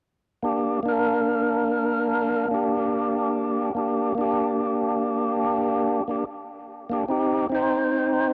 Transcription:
0.42 0.80 A#3 medium
0.42 0.80 D4 medium
0.42 0.81 G4 medium
0.83 2.46 A#3 medium
0.83 2.47 D4 medium
0.88 2.48 A#4 medium
2.48 3.70 A#3 medium
2.48 3.71 D4 medium
2.54 3.73 G4 medium
3.75 4.12 A#3 medium
3.75 4.13 D4 medium
3.75 4.14 G4 medium
4.15 6.01 A#3 medium
4.15 6.02 D4 medium
4.21 6.04 G4 medium
6.08 6.24 A#3 medium
6.08 6.24 D4 medium
6.08 6.25 G4 medium
6.89 7.04 A#3 medium
6.89 7.05 D4 medium
6.89 7.06 G4 medium
7.08 7.46 C4 medium
7.08 7.47 D#4 medium
7.08 7.47 G4 medium
7.49 8.33 C4 medium
7.49 8.33 D#4 medium
7.55 8.33 C5 medium

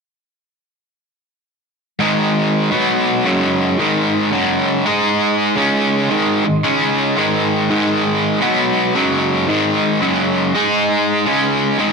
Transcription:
1.99 2.70 G#2 medium
1.99 2.71 D#3 medium
1.99 11.93 G#3 medium
1.99 2.71 G#3 loud
1.99 11.93 D#4 medium
1.99 11.93 D#5 medium
1.99 11.93 C6 medium
2.71 3.24 B2 medium
2.71 3.24 F#3 medium
2.71 3.24 B3 medium
3.24 3.77 F#2 medium
3.24 3.78 C#3 loud
3.24 3.78 F#3 medium
3.79 4.31 G#2 medium
3.79 4.31 D#3 medium
3.79 4.32 G#3 medium
4.31 4.84 F#2 medium
4.31 4.85 C#3 medium
4.31 4.85 F#3 loud
4.86 5.56 G#3 medium
4.86 5.56 D#4 medium
4.86 5.57 G#4 medium
5.56 6.08 C#3 medium
5.56 6.09 G#3 loud
5.56 6.09 C#4 loud
6.10 6.44 G#2 medium
6.10 6.44 D#3 medium
6.10 6.45 G#3 medium
6.45 6.63 G#2 medium
6.45 6.63 D#3 medium
6.63 7.16 C#3 medium
6.63 7.16 G#3 medium
6.63 7.16 C#4 loud
7.17 7.68 G#2 medium
7.17 7.69 D#3 medium
7.17 7.70 G#3 medium
7.69 8.40 G#2 loud
7.69 8.40 D#3 medium
7.69 8.41 G#3 medium
8.41 8.93 B2 medium
8.41 8.94 F#3 medium
8.41 8.94 B3 medium
8.95 9.47 F#2 medium
8.95 9.47 C#3 medium
8.95 9.47 F#3 loud
9.48 10.00 G#2 medium
9.48 10.01 D#3 medium
9.48 10.01 G#3 medium
10.01 10.53 F#2 medium
10.01 10.54 C#3 medium
10.01 10.54 F#3 loud
10.55 11.25 G#3 medium
10.55 11.25 D#4 medium
10.55 11.25 G#4 loud
11.26 11.78 C#3 medium
11.26 11.78 G#3 medium
11.26 11.79 C#4 medium
11.78 11.93 G#2 medium
11.78 11.93 D#3 medium
11.78 11.93 G#3 loud

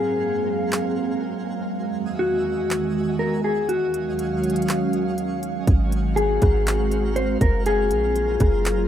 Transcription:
0.00 1.69 F#2 medium
0.00 1.67 F#3 medium
0.00 5.63 G#3 medium
0.00 1.67 A#3 medium
0.00 1.67 C4 medium
0.00 1.67 F#4 medium
0.00 1.17 G#4 loud
0.00 1.67 A#4 medium
0.00 1.67 C5 medium
0.00 1.67 F5 medium
0.00 1.67 G#5 medium
0.72 clap loud
1.71 3.67 E2 medium
1.71 5.63 D#3 medium
1.71 3.67 F#4 medium
1.71 5.64 F#4 medium
1.71 5.63 D#5 medium
1.71 3.67 E5 medium
1.71 5.63 G#5 medium
2.19 3.15 F#4 medium
2.71 clap loud
3.19 3.43 A#4 medium
3.44 3.68 G#4 medium
3.69 5.66 D#2 medium
3.69 5.65 F#3 medium
3.69 5.65 C#4 medium
3.69 5.14 F#4 loud
3.69 5.65 C#5 medium
3.69 5.65 F5 medium
3.69 closed hi-hat medium
3.94 closed hi-hat medium
4.19 closed hi-hat medium
4.44 closed hi-hat medium
4.50 closed hi-hat medium
4.56 closed hi-hat medium
4.62 closed hi-hat medium
4.68 clap loud
4.68 closed hi-hat medium
4.93 closed hi-hat medium
5.18 closed hi-hat medium
5.43 closed hi-hat medium
5.67 6.39 G#1 loud
5.67 7.64 G#3 medium
5.67 8.88 C4 medium
5.67 7.64 C4 medium
5.67 7.64 F#4 medium
5.67 8.88 A#4 medium
5.67 8.88 F5 medium
5.67 kick loud
5.67 closed hi-hat medium
5.92 closed hi-hat medium
6.16 7.12 G#4 medium
6.16 closed hi-hat medium
6.42 7.37 G#1 loud
6.42 kick medium
6.42 cross-stick medium
6.42 closed hi-hat medium
6.67 clap loud
6.67 closed hi-hat medium
6.92 closed hi-hat medium
7.16 7.40 C5 medium
7.16 closed hi-hat medium
7.41 7.92 F#1 loud
7.41 7.65 A#4 medium
7.41 kick medium
7.41 closed hi-hat medium
7.66 8.88 F#3 medium
7.66 8.88 A#3 medium
7.66 8.88 F4 medium
7.66 8.88 G#4 medium
7.66 8.88 G#4 loud
7.66 closed hi-hat medium
7.91 8.38 A#1 loud
7.91 closed hi-hat medium
8.16 closed hi-hat medium
8.40 8.88 F#1 loud
8.40 kick loud
8.40 cross-stick medium
8.40 closed hi-hat medium
8.65 clap loud
8.65 closed hi-hat medium

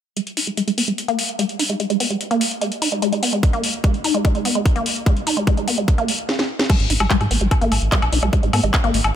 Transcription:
0.17 0.21 G#3 medium
0.17 closed hi-hat medium
0.27 closed hi-hat soft
0.37 0.41 D#4 medium
0.37 open hi-hat loud
0.47 0.50 G#3 medium
0.47 closed hi-hat soft
0.57 0.62 G#3 medium
0.57 closed hi-hat medium
0.68 0.70 G#3 medium
0.68 closed hi-hat soft
0.78 0.80 B3 medium
0.78 open hi-hat loud
0.88 0.92 G#3 medium
0.88 closed hi-hat soft
0.98 closed hi-hat medium
1.08 1.13 A#3 loud
1.08 closed hi-hat soft
1.19 open hi-hat loud
1.29 closed hi-hat soft
1.39 1.43 G#3 medium
1.39 closed hi-hat medium
1.49 closed hi-hat soft
1.59 1.64 D#4 medium
1.59 open hi-hat loud
1.70 1.72 G#3 medium
1.70 closed hi-hat soft
1.80 1.84 G#3 medium
1.80 closed hi-hat medium
1.90 1.93 G#3 medium
1.90 closed hi-hat soft
2.00 2.03 B3 medium
2.00 open hi-hat loud
2.10 2.15 G#3 medium
2.10 closed hi-hat soft
2.21 closed hi-hat medium
2.31 2.35 A#3 loud
2.31 closed hi-hat soft
2.41 open hi-hat loud
2.51 closed hi-hat soft
2.61 2.66 G#3 medium
2.61 closed hi-hat medium
2.72 closed hi-hat soft
2.82 2.86 D#4 medium
2.82 open hi-hat loud
2.92 2.95 G#3 medium
2.92 closed hi-hat soft
3.02 3.07 G#3 medium
3.02 closed hi-hat medium
3.12 3.15 G#3 medium
3.12 closed hi-hat soft
3.23 3.25 B3 medium
3.23 open hi-hat loud
3.33 3.37 G#3 medium
3.33 closed hi-hat soft
3.43 kick loud
3.43 closed hi-hat medium
3.53 3.58 A#3 loud
3.53 closed hi-hat soft
3.64 open hi-hat loud
3.74 closed hi-hat soft
3.84 3.88 G#3 medium
3.84 kick loud
3.84 closed hi-hat medium
3.94 closed hi-hat soft
4.04 4.09 D#4 medium
4.04 open hi-hat loud
4.15 4.17 G#3 medium
4.15 closed hi-hat soft
4.25 4.29 G#3 medium
4.25 kick loud
4.25 closed hi-hat medium
4.35 4.38 G#3 medium
4.35 closed hi-hat soft
4.45 4.48 B3 medium
4.45 open hi-hat loud
4.55 4.60 G#3 medium
4.55 closed hi-hat soft
4.66 kick loud
4.66 closed hi-hat medium
4.76 4.80 A#3 loud
4.76 closed hi-hat soft
4.86 open hi-hat loud
4.96 closed hi-hat soft
5.06 5.11 G#3 medium
5.06 kick loud
5.06 closed hi-hat medium
5.17 closed hi-hat soft
5.27 5.31 D#4 medium
5.27 open hi-hat loud
5.37 5.40 G#3 medium
5.37 closed hi-hat soft
5.47 5.52 G#3 medium
5.47 kick loud
5.47 closed hi-hat medium
5.57 5.60 G#3 medium
5.57 closed hi-hat soft
5.68 5.70 B3 medium
5.68 open hi-hat loud
5.78 5.82 G#3 medium
5.78 closed hi-hat soft
5.88 kick loud
5.88 closed hi-hat medium
5.98 6.03 A#3 loud
5.98 closed hi-hat soft
6.08 open hi-hat loud
6.19 closed hi-hat soft
6.29 snare medium
6.39 snare medium
6.59 snare medium
6.70 6.74 G#3 medium
6.70 kick loud
6.70 closed hi-hat medium
6.70 crash medium
6.70 high woodblock soft
6.80 6.87 G#1 medium
6.80 closed hi-hat soft
6.90 6.97 G#1 medium
6.90 6.94 D#4 medium
6.90 open hi-hat loud
7.00 7.07 G#1 medium
7.00 7.03 G#3 medium
7.00 high woodblock medium
7.10 7.15 G#3 medium
7.10 kick loud
7.10 clap loud
7.10 closed hi-hat medium
7.21 7.28 G#2 medium
7.21 7.23 G#3 medium
7.21 closed hi-hat soft
7.21 high woodblock soft
7.31 7.38 G#1 loud
7.31 7.33 B3 medium
7.31 open hi-hat loud
7.41 7.48 G#1 medium
7.41 7.45 G#3 medium
7.41 closed hi-hat soft
7.51 kick loud
7.51 closed hi-hat medium
7.51 high woodblock medium
7.61 7.69 G#1 medium
7.61 7.66 A#3 loud
7.61 closed hi-hat soft
7.72 7.79 G#1 loud
7.72 open hi-hat loud
7.72 high woodblock soft
7.82 7.89 G#1 medium
7.82 closed hi-hat soft
7.92 7.96 G#3 medium
7.92 kick loud
7.92 clap loud
7.92 closed hi-hat medium
8.02 8.09 A#1 medium
8.02 closed hi-hat soft
8.02 high woodblock medium
8.12 8.20 A#1 loud
8.12 8.17 D#4 medium
8.12 open hi-hat loud
8.23 8.30 A#1 medium
8.23 8.25 G#3 medium
8.23 closed hi-hat soft
8.23 high woodblock soft
8.33 8.37 G#3 medium
8.33 kick loud
8.33 closed hi-hat medium
8.43 8.50 G#1 medium
8.43 8.46 G#3 medium
8.43 closed hi-hat soft
8.53 8.60 G#2 loud
8.53 8.56 B3 medium
8.53 open hi-hat loud
8.53 high woodblock medium
8.64 8.71 G#1 medium
8.64 8.68 G#3 medium
8.64 closed hi-hat soft
8.74 kick loud
8.74 clap loud
8.74 closed hi-hat medium
8.74 high woodblock soft
8.84 8.91 G#1 medium
8.84 8.88 A#3 loud
8.84 closed hi-hat soft
8.94 9.01 G#1 loud
8.94 open hi-hat loud
9.04 9.11 G#1 medium
9.04 high woodblock medium

